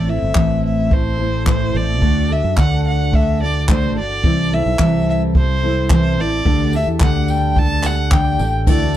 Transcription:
Already playing: fretless electric bass A1, violin D5
0.06 steel-string acoustic guitar A3 C4 E4 A4, violin E5
0.22 fretless electric bass G1
0.34 fretless electric bass A1, steel-string acoustic guitar A2 E3 A3 C4 E4 A4, kick, clap
0.65 violin E5
0.90 steel-string acoustic guitar A3 C4 E4 A4, violin C5, kick
1.17 steel-string acoustic guitar A3 C4 E4 A4
1.45 steel-string acoustic guitar A2 E3 A3 C4 E4 A4, kick, clap
1.49 violin C5
1.72 fretless electric bass A1, steel-string acoustic guitar A3 C4 E4 A4
1.77 violin D5
2.01 fretless electric bass D2, steel-string acoustic guitar D3 A3 D4 F#4 A4, kick
2.29 steel-string acoustic guitar D4 F#4 A4, violin E5
2.44 fretless electric bass F#2
2.56 fretless electric bass D2, steel-string acoustic guitar D3 A3 D4 F#4 A4, violin F#5, kick, clap
2.88 violin F#5
3.11 steel-string acoustic guitar A3 D4 F#4 A4, violin E5, kick
3.40 steel-string acoustic guitar D4 F#4 A4, violin D5
3.68 steel-string acoustic guitar D3 A3 D4 F#4 A4, violin C5, kick, clap
3.95 fretless electric bass G1, steel-string acoustic guitar D4 F#4 A4, violin D5
4.23 fretless electric bass C2, steel-string acoustic guitar C3 E3 G3 C4 E4 A4, kick
4.50 steel-string acoustic guitar G3 C4 E4 A4
4.54 violin E5
4.66 fretless electric bass B1
4.78 fretless electric bass C2, steel-string acoustic guitar C3 E3 G3 C4 E4 A4, kick, clap
5.10 violin E5
5.34 steel-string acoustic guitar G3 C4 E4 A4, kick
5.38 violin C5
5.62 steel-string acoustic guitar G3 C4 E4 A4
5.90 steel-string acoustic guitar C3 E3 G3 C4 E4 A4, violin C5, kick, clap
6.17 fretless electric bass A1, steel-string acoustic guitar G3 C4 E4 A4, violin D5
6.45 fretless electric bass D2, steel-string acoustic guitar D3 G3 D4 G4 A4, kick
6.73 steel-string acoustic guitar D4 G4 A4, violin E5, tambourine
6.87 fretless electric bass E2
7.00 fretless electric bass D2, steel-string acoustic guitar D3 G3 D4 G4 A4, violin F#5, kick, clap
7.28 violin G5, tambourine
7.56 steel-string acoustic guitar G3 D4 G4 A4, violin A5, kick
7.83 steel-string acoustic guitar D4 G4 A4, violin F#5, clap, tambourine
8.12 steel-string acoustic guitar D3 G3 D4 G4 A4, violin G5, kick, clap
8.39 fretless electric bass A1, steel-string acoustic guitar D4 G4 A4, tambourine
8.67 fretless electric bass D2, steel-string acoustic guitar D3 A3 E4 F#4 A4, violin D5, kick, crash

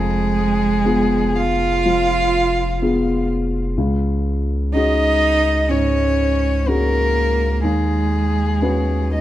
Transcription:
Already playing: sub bass F1, grand piano F2, cello G#3, violin G#4
0.85 grand piano B3 F4 G#4
1.36 cello F4, violin F5
1.85 grand piano F3
2.82 grand piano B3 F4 G#4
3.77 sub bass C#2, grand piano C#2
4.73 grand piano C#4 F#4 G#4, cello D#4, violin D#5
5.69 grand piano G#2, cello C#4, violin C#5
6.66 cello A#3, grand piano C#4 F#4 G#4, violin A#4
7.63 sub bass D#2, grand piano D#2, cello G#3, violin G#4
8.62 grand piano C#4 F#4 B4
9.11 cello D#4, violin D#5

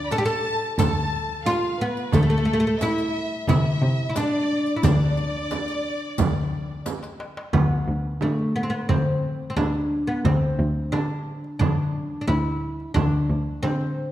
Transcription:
Already playing: cello D2, oud D4
0.07 violin section A5 B5
0.11 oud A4, riq, darbuka tek, frame drum
0.18 oud G4
0.24 oud A4, violin section A5, riq
0.29 darbuka ka
0.78 cello D2, oud A4, violin section A5, riq, frame drum, darbuka dum
1.46 oud F4, violin section F5, riq, darbuka tek, frame drum
1.63 darbuka ka
1.80 oud B3, violin section B4
1.97 riq, darbuka ka
2.12 cello D2, oud A3, violin section A4, riq, frame drum, darbuka dum
2.23 oud A3
2.30 oud A3
2.38 oud A3
2.45 oud A3
2.53 oud A3
2.60 oud A3
2.67 oud A3
2.80 oud E4, violin section E5, riq, darbuka tek, frame drum
2.97 riq, darbuka ka
3.47 cello C3, oud E4, violin section E5, riq, darbuka dum, frame drum
3.82 cello C3
4.09 oud E4
4.15 oud D4, violin section D5, riq, darbuka tek, frame drum
4.33 darbuka ka
4.66 riq, darbuka ka
4.76 oud E4
4.83 cello D2, oud D4, violin section D5, riq, frame drum, darbuka dum
5.17 riq, darbuka ka
5.51 riq, darbuka tek, frame drum
5.68 riq, darbuka ka
6.02 darbuka ka
6.18 cello D2, riq, frame drum, darbuka dum
6.54 darbuka ka
6.86 riq, darbuka tek, frame drum
7.03 riq, darbuka ka
7.20 darbuka tek
7.37 darbuka ka
7.53 cello D2, oud B3, frame drum, darbuka dum
7.88 cello D2, darbuka ka
8.21 cello D3, oud A3, darbuka tek, frame drum
8.39 darbuka ka
8.56 oud B3
8.63 oud C4
8.70 oud B3, darbuka ka
8.89 oud C4, frame drum, darbuka dum
9.50 oud C4
9.56 cello D2, oud D4, darbuka tek, frame drum
9.75 darbuka ka
10.07 oud B3, darbuka ka
10.25 cello D2, oud C4, frame drum, darbuka dum
10.59 cello D2, darbuka ka
10.92 cello D3, oud D4, darbuka tek, frame drum
11.10 darbuka ka
11.44 darbuka ka
11.59 oud D4, frame drum, darbuka dum
12.21 oud D4
12.28 cello D2, oud E4, darbuka tek, frame drum
12.46 darbuka ka
12.80 darbuka ka
12.94 cello D2, oud D4, frame drum, darbuka dum
13.30 cello D2, darbuka ka
13.63 cello D3, oud C4, darbuka tek, frame drum
13.81 darbuka ka

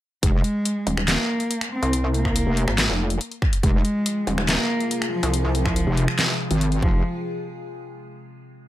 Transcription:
0.23 wobble bass F1, cello G#3, kick, closed hi-hat
0.44 closed hi-hat
0.65 closed hi-hat
0.87 wobble bass D#1, closed hi-hat
0.97 finger snap
1.08 cello A#3, snare, clap, closed hi-hat
1.40 closed hi-hat
1.51 closed hi-hat
1.61 finger snap, closed hi-hat
1.72 cello C4
1.83 wobble bass C2, closed hi-hat
1.93 closed hi-hat
2.14 cello A#3, closed hi-hat
2.25 finger snap, kick
2.36 closed hi-hat
2.46 wobble bass F1
2.57 closed hi-hat
2.68 wobble bass G#1, finger snap
2.78 snare, clap, closed hi-hat
2.89 wobble bass F1
3.10 closed hi-hat
3.21 closed hi-hat
3.32 closed hi-hat
3.42 finger snap, kick
3.53 closed hi-hat
3.63 wobble bass F1, ambient pad C3 F3 G#3 F4 G#4, cello G#3, kick, closed hi-hat
3.85 closed hi-hat
4.06 closed hi-hat
4.27 wobble bass D#1, closed hi-hat
4.38 finger snap
4.48 cello A#3, snare, clap, closed hi-hat
4.80 closed hi-hat
4.91 closed hi-hat
5.02 finger snap, closed hi-hat
5.12 cello F3
5.23 wobble bass C2, closed hi-hat
5.34 closed hi-hat
5.55 cello F3, closed hi-hat
5.66 finger snap, kick
5.76 closed hi-hat
5.87 wobble bass F1
5.97 closed hi-hat
6.08 finger snap
6.19 snare, clap, closed hi-hat
6.51 wobble bass G#1, closed hi-hat
6.61 closed hi-hat
6.72 closed hi-hat
6.82 wobble bass F1, cello F3, kick

